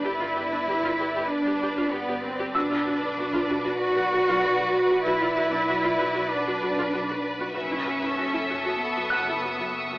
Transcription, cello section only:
0.05 E4
1.30 D4
1.92 B3
2.23 C4
2.55 D4
3.79 F#4
5.05 E4
6.30 D4
7.56 C#4
8.80 B3

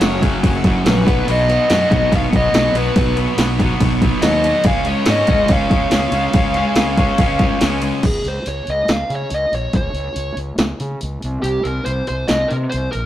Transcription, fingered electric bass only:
0.01 F#1
0.43 F#1
0.86 A#1
1.07 B1
1.28 B1
1.70 F#2
1.92 B1
2.13 B1
2.33 B1
2.54 B1
2.74 B1
2.96 B1
3.37 B1
3.81 B1
4.23 D#2
4.64 C#2
5.08 G#2
5.28 C#2
5.49 C#2
5.71 C#2
5.91 C#2
6.12 C#2
6.34 C#2
6.75 C#2
7.18 C#2
7.62 C#2
8.03 C#2
8.24 C#2
8.47 C#2
8.68 C#2
8.89 C#2
9.10 C#3
9.31 C#2
9.52 A#1
9.74 C#2
9.93 C#2
10.16 C#2
10.36 C#2
10.58 C#2
10.80 C#3
11.03 C#2
11.24 C2
11.43 C2
11.65 C2
11.86 C2
12.10 C2
12.30 C2
12.51 C3
12.74 C2
12.95 A#1

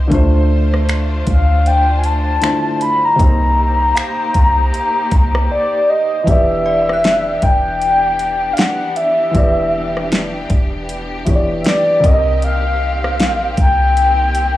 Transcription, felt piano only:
Already playing: C5
0.07 D3 A3
0.12 F4 C5
2.41 D3 A3 E4 C5
2.50 F4
3.16 C3 A#3
3.20 D#4 C5
6.24 E3 B3
6.28 G4 D5
9.31 E3 B3
9.35 G4 D5
11.25 E3 B3 G4 C#5
11.35 D5
12.00 C3 C4
12.05 A#4 D5
12.14 D#5

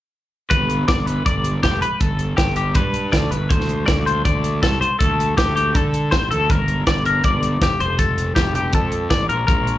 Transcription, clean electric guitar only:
0.50 B4
0.88 D5
1.06 B4
1.26 D5
1.63 G4
1.82 B4
2.00 A4
2.37 G4
2.57 G4
2.75 B4
3.12 D5
3.31 B4
3.49 C5
3.86 D5
4.06 C5
4.25 D5
4.63 A4
4.81 C5
4.99 A4
5.37 G4
5.56 G4
5.75 A4
6.11 C5
6.31 A4
6.50 A#4
6.87 D5
7.06 A#4
7.25 D5
7.63 G4
7.80 C5
7.99 A4
8.35 G4
8.55 G4
8.75 A4
9.10 D5
9.29 A#4
9.47 A#4

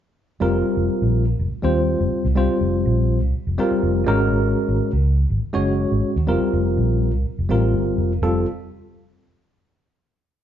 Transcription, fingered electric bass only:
0.41 F1
0.77 F1
1.02 A#1
1.39 F1
1.52 muted fingered electric bass stroke
1.63 D#2
2.00 F1
2.12 muted fingered electric bass stroke
2.25 C2
2.61 F1
2.86 A#1
3.22 C2
3.35 muted fingered electric bass stroke
3.47 F1
3.71 muted fingered electric bass stroke
3.83 F1
4.08 G#1
4.32 G#1
4.68 G#1
4.93 C#2
5.30 G#1
5.43 muted fingered electric bass stroke
5.55 F#1
5.92 G#1
6.16 D#2
6.28 F1
6.41 muted fingered electric bass stroke
6.53 F1
6.77 A#1
7.14 C2
7.26 muted fingered electric bass stroke
7.39 F1
7.50 A1
7.74 G1
7.98 F1
8.22 F1

